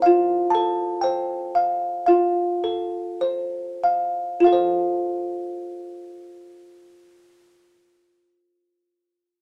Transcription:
\new Staff \with { instrumentName = "Music box" } { \time 4/4 \key f \major \tempo 4 = 48 << { f''8 a''8 g''4 f''4. r8 | <f' a' c'' f''>1 | } \\ { f'8 a'8 c''8 f''8 f'8 a'8 c''8 f''8 | r1 | } >> }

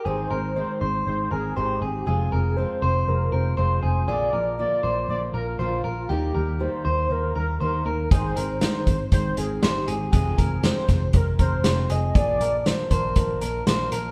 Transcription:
<<
  \new Staff \with { instrumentName = "Soft synth lead" } { \time 4/4 \key aes \lydian \tempo 4 = 119 c''4 c''4 c''8 aes'8 g'4 | aes'4 c''4 bes'8 c''8 c''4 | d''4 d''4 d''8 bes'8 f'4 | g'4 c''4 bes'8 bes'8 bes'4 |
c''4 c''4 c''8 aes'8 g'4 | aes'4 c''4 bes'8 c''4 ees''8 | d''4 c''8 bes'4. bes'4 | }
  \new Staff \with { instrumentName = "Clean electric guitar" } { \time 4/4 \key aes \lydian aes'8 bes'4 c''4 bes'8 c''8 aes'8 | aes'8 bes'4 c''4 bes'8 c''8 aes'8 | aes'8 bes'4 c''4 bes'8 c''8 bes'8 | g'8 bes'4 c''4 bes'8 c''8 bes'8 |
aes'8 bes'4 c''4 bes'8 c''8 aes'8 | aes'8 bes'4 c''4 bes'8 c''8 aes'8 | aes'8 bes'4 c''4 bes'8 c''8 bes'8 | }
  \new Staff \with { instrumentName = "Steel-string acoustic guitar" } { \time 4/4 \key aes \lydian <aes, ees aes c' ees'>8 <aes c' ees'>8 <aes, ees aes c' ees'>8 <aes c' ees'>8 <ees aes c' ees'>8 <aes c' ees'>8 <aes, ees aes c' ees'>8 <aes c' ees'>8 | <f aes c' f'>8 <aes c' f'>8 <f aes c' f'>8 <aes c' f'>8 <f aes c' f'>8 <aes c' f'>8 <f aes c' f'>8 <aes c' f'>8 | <bes, d f bes f'>8 <f bes f'>8 <bes, d f bes f'>8 <f bes f'>8 <d f bes f'>8 <f bes f'>8 <bes, d f bes f'>8 <f bes f'>8 | <ees g bes ees'>8 <g bes ees'>8 <ees g bes ees'>8 <g bes ees'>8 <ees g bes ees'>8 <g bes ees'>8 <ees g bes ees'>8 <g bes ees'>8 |
<aes, ees aes c' ees'>8 <aes c' ees'>8 <aes, ees aes c' ees'>8 <aes c' ees'>8 <ees aes c' ees'>8 <aes c' ees'>8 <aes, ees aes c' ees'>8 <aes c' ees'>8 | <f, c f aes c'>8 <f aes c'>8 <f, c f aes c'>8 <f aes c'>8 <c f aes c'>8 <f aes c'>8 <f, c f aes c'>8 <f aes c'>8 | <bes, f bes d'>8 <f bes d'>8 <bes, f bes d'>8 <f bes d'>8 <bes, f bes d'>8 <f bes d'>8 <bes, f bes d'>8 <f bes d'>8 | }
  \new Staff \with { instrumentName = "Picked electric bass" } { \clef bass \time 4/4 \key aes \lydian aes,,8 aes,,8. r16 aes,,8 aes,,8 aes,,8 aes,,8 aes,,8 | f,,8 f,,8. r16 f,,8 f,,8 f,,8 f,,8 f,,8 | bes,,8 bes,,8. r16 bes,,8 bes,,8 bes,,8 bes,,8 bes,,8 | ees,8 ees,8. r16 ees,8 ees,8 ees,8 ees,8 ees,8 |
aes,,8 aes,,8. r16 aes,,8 aes,,8 aes,,8 aes,,8 aes,,8 | f,,8 f,,8. r16 f,,8 f,,8 f,,8 f,,8 f,,8 | bes,,8 bes,,8. r16 bes,,8 bes,,8 bes,,8 bes,,8 bes,,8 | }
  \new DrumStaff \with { instrumentName = "Drums" } \drummode { \time 4/4 r4 r4 r4 r4 | r4 r4 r4 r4 | r4 r4 r4 r4 | r4 r4 r4 r4 |
<hh bd>8 hh8 <hh sn>8 <hh bd>8 <hh bd>8 hh8 <hh sn>8 hh8 | <hh bd>8 <hh bd>8 <hh sn>8 <hh bd sn>8 <hh bd>8 <hh bd>8 <hh sn>8 hh8 | <hh bd>8 hh8 <hh sn>8 <hh bd>8 <hh bd>8 hh8 <hh sn>8 hh8 | }
>>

